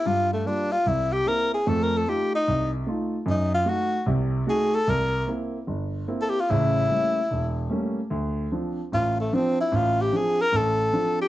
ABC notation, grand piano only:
X:1
M:4/4
L:1/8
Q:"Swing" 1/4=149
K:Dm
V:1 name="Grand piano"
G,,2 [G,B,F] z C,,2 [B,CE] z | [F,,A,]2 [A,_EF] z C,,2 [A,EF] z | ^F,,2 [A,^D^F] z [C,,C,]2 [A,DF] z | C,,2 [B,CE] z G,,,2 [B,CE] z |
[A,,,^C,]2 [G,A,B,^C] z E,,,2 [G,A,B,C] z | D,,2 [F,CD] z A,,,2 [F,CD] z | A,,,2 [F,CD] z A,,,2 [F,CD] z |]